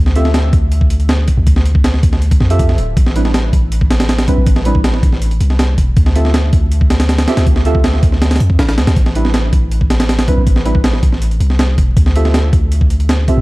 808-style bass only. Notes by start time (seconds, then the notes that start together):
Already playing: D2
0.53 D2
1.37 D2
2.03 D2
2.40 F2
2.78 D1
2.97 A1
3.53 A1
4.38 A1
5.03 A1
5.41 C2
5.78 E1
5.97 D2
6.53 D2
7.37 D2
8.03 D2
8.40 F2
8.59 A1
8.78 D2
8.87 D2
8.96 A1
9.53 A1
10.37 A1
11.03 A1
11.40 C2
11.78 E1
11.97 D2
12.53 D2
13.37 D2